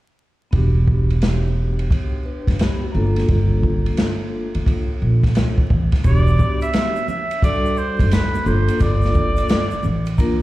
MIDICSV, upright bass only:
0, 0, Header, 1, 3, 480
1, 0, Start_track
1, 0, Key_signature, 1, "minor"
1, 0, Tempo, 689655
1, 369, Time_signature, 4, 2, 24, 8
1, 7253, End_track
2, 0, Start_track
2, 0, Title_t, "Upright bass"
2, 0, Program_c, 0, 32
2, 369, Note_on_c, 0, 28, 95
2, 1301, Note_off_c, 0, 28, 0
2, 1724, Note_on_c, 0, 30, 70
2, 1797, Note_off_c, 0, 30, 0
2, 2050, Note_on_c, 0, 31, 91
2, 2259, Note_off_c, 0, 31, 0
2, 2289, Note_on_c, 0, 31, 100
2, 2708, Note_off_c, 0, 31, 0
2, 3167, Note_on_c, 0, 38, 77
2, 3239, Note_off_c, 0, 38, 0
2, 3492, Note_on_c, 0, 34, 83
2, 3700, Note_off_c, 0, 34, 0
2, 3970, Note_on_c, 0, 33, 75
2, 4107, Note_off_c, 0, 33, 0
2, 4209, Note_on_c, 0, 28, 102
2, 4419, Note_off_c, 0, 28, 0
2, 5564, Note_on_c, 0, 30, 81
2, 5637, Note_off_c, 0, 30, 0
2, 5889, Note_on_c, 0, 31, 89
2, 6026, Note_off_c, 0, 31, 0
2, 6130, Note_on_c, 0, 31, 110
2, 6549, Note_off_c, 0, 31, 0
2, 6851, Note_on_c, 0, 33, 76
2, 7253, Note_off_c, 0, 33, 0
2, 7253, End_track
3, 0, Start_track
3, 0, Title_t, "Muted upright bass strokes"
3, 6768, Note_on_c, 9, 29, 44
3, 6838, Note_off_c, 9, 29, 0
3, 7253, End_track
0, 0, End_of_file